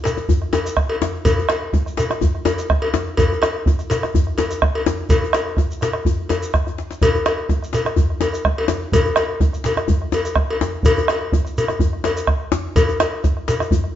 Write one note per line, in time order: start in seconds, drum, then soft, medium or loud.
0.04 cowbell soft
0.04 djembe slap medium
0.04 shekere medium
0.17 djembe slap soft
0.17 djembe tone medium
0.29 bombo low medium
0.29 djembe bass medium
0.42 bombo rim soft
0.53 cowbell soft
0.53 djembe slap medium
0.53 djembe tone medium
0.53 shekere soft
0.66 bombo rim soft
0.66 shekere soft
0.77 bombo rim medium
0.77 bombo low medium
0.90 cowbell soft
1.02 djembe slap medium
1.02 djembe tone medium
1.15 djembe slap soft
1.25 bombo low medium
1.25 cowbell medium
1.25 djembe slap soft
1.25 djembe bass medium
1.25 shekere medium
1.39 djembe tone medium
1.49 bombo rim medium
1.49 cowbell soft
1.49 djembe slap medium
1.73 bombo low medium
1.73 djembe tone medium
1.85 bombo rim soft
1.85 djembe slap soft
1.85 shekere soft
1.97 cowbell soft
1.97 djembe slap medium
1.97 shekere medium
2.10 bombo rim medium
2.10 djembe slap soft
2.10 djembe tone medium
2.21 bombo low medium
2.21 djembe bass medium
2.35 bombo rim soft
2.45 cowbell soft
2.45 djembe slap medium
2.45 djembe tone medium
2.45 shekere soft
2.58 bombo rim soft
2.58 shekere soft
2.70 bombo rim medium
2.70 bombo low medium
2.82 cowbell soft
2.94 djembe slap medium
2.94 djembe tone medium
3.07 djembe slap soft
3.17 bombo low medium
3.17 cowbell medium
3.17 djembe slap soft
3.17 djembe bass medium
3.17 shekere medium
3.32 djembe tone medium
3.42 bombo rim loud
3.42 cowbell soft
3.42 djembe slap medium
3.66 bombo low loud
3.66 djembe tone medium
3.79 bombo rim soft
3.79 djembe slap soft
3.79 shekere soft
3.90 cowbell soft
3.90 djembe slap medium
3.90 shekere medium
4.03 bombo rim medium
4.03 djembe slap soft
4.03 djembe tone medium
4.14 bombo low medium
4.14 djembe bass medium
4.27 bombo rim soft
4.38 cowbell soft
4.38 djembe slap medium
4.38 djembe tone medium
4.38 shekere soft
4.50 bombo rim soft
4.50 shekere soft
4.62 bombo rim medium
4.62 bombo low medium
4.75 cowbell soft
4.86 djembe slap medium
4.86 djembe tone medium
5.09 bombo low medium
5.09 cowbell medium
5.09 djembe slap soft
5.09 djembe bass medium
5.09 shekere medium
5.24 djembe tone medium
5.33 bombo rim loud
5.33 cowbell soft
5.33 djembe slap medium
5.33 shekere soft
5.57 bombo rim soft
5.57 bombo low medium
5.57 djembe tone medium
5.71 shekere soft
5.81 bombo rim soft
5.81 cowbell soft
5.81 djembe slap medium
5.81 shekere medium
5.93 bombo rim medium
6.05 bombo low medium
6.05 djembe bass medium
6.29 cowbell soft
6.29 djembe slap medium
6.29 djembe tone medium
6.29 shekere soft
6.43 djembe slap soft
6.43 shekere soft
6.54 bombo rim medium
6.54 bombo low medium
6.54 djembe bass soft
6.67 bombo rim soft
6.67 djembe bass soft
6.78 djembe slap medium
6.91 djembe slap medium
6.91 shekere soft
7.01 bombo low medium
7.01 cowbell medium
7.01 djembe slap soft
7.01 djembe bass medium
7.01 shekere medium
7.15 djembe tone medium
7.26 bombo rim medium
7.26 cowbell soft
7.26 djembe slap medium
7.49 bombo low medium
7.49 djembe tone medium
7.62 bombo rim soft
7.62 djembe slap soft
7.62 shekere soft
7.73 cowbell medium
7.73 djembe slap medium
7.73 shekere medium
7.85 bombo rim medium
7.85 djembe slap soft
7.85 djembe tone medium
7.96 bombo low medium
7.96 djembe bass medium
8.10 bombo rim soft
8.21 cowbell soft
8.21 djembe slap medium
8.21 djembe tone medium
8.21 shekere soft
8.33 bombo rim soft
8.33 shekere soft
8.45 bombo rim medium
8.45 bombo low medium
8.58 cowbell soft
8.68 djembe slap medium
8.68 djembe tone medium
8.82 djembe slap soft
8.92 bombo low loud
8.92 cowbell medium
8.92 djembe slap soft
8.92 djembe bass medium
8.92 shekere medium
9.05 djembe tone medium
9.16 bombo rim loud
9.16 cowbell medium
9.16 djembe slap medium
9.40 bombo low loud
9.40 djembe tone medium
9.53 bombo rim soft
9.53 djembe slap soft
9.53 shekere soft
9.64 cowbell soft
9.64 djembe slap medium
9.64 shekere medium
9.77 bombo rim medium
9.77 djembe slap soft
9.77 djembe tone medium
9.88 bombo low loud
9.88 djembe bass medium
10.02 bombo rim soft
10.12 cowbell medium
10.12 djembe slap medium
10.12 djembe tone medium
10.12 shekere soft
10.25 bombo rim soft
10.25 shekere soft
10.35 bombo rim medium
10.35 bombo low medium
10.51 cowbell soft
10.61 djembe slap medium
10.61 djembe tone medium
10.73 djembe slap soft
10.83 bombo low medium
10.83 cowbell medium
10.83 djembe slap soft
10.83 djembe bass medium
10.83 shekere medium
10.98 djembe tone medium
11.08 bombo rim loud
11.08 cowbell medium
11.08 djembe slap medium
11.32 bombo low loud
11.32 djembe tone medium
11.45 bombo rim soft
11.45 djembe slap soft
11.45 shekere soft
11.58 cowbell medium
11.58 shekere medium
11.68 bombo rim medium
11.68 djembe slap soft
11.68 djembe tone medium
11.79 bombo low loud
11.79 djembe bass medium
11.93 bombo rim soft
12.04 cowbell soft
12.04 djembe slap medium
12.04 djembe tone medium
12.04 shekere soft
12.16 bombo rim soft
12.16 shekere soft
12.27 bombo rim medium
12.27 bombo low medium
12.52 djembe slap medium
12.52 djembe tone medium
12.65 djembe slap soft
12.76 bombo low medium
12.76 cowbell medium
12.76 djembe slap soft
12.76 djembe bass medium
12.76 shekere medium
12.89 djembe slap soft
12.89 djembe tone medium
12.89 shekere soft
13.00 bombo rim loud
13.00 cowbell soft
13.00 djembe slap medium
13.24 bombo rim soft
13.24 bombo low medium
13.24 djembe slap soft
13.24 djembe tone medium
13.24 shekere soft
13.37 bombo rim soft
13.48 cowbell soft
13.48 djembe slap medium
13.48 shekere medium
13.60 bombo rim medium
13.60 djembe tone medium
13.60 shekere soft
13.71 bombo low loud
13.71 djembe bass medium
13.71 shekere soft
13.84 bombo rim soft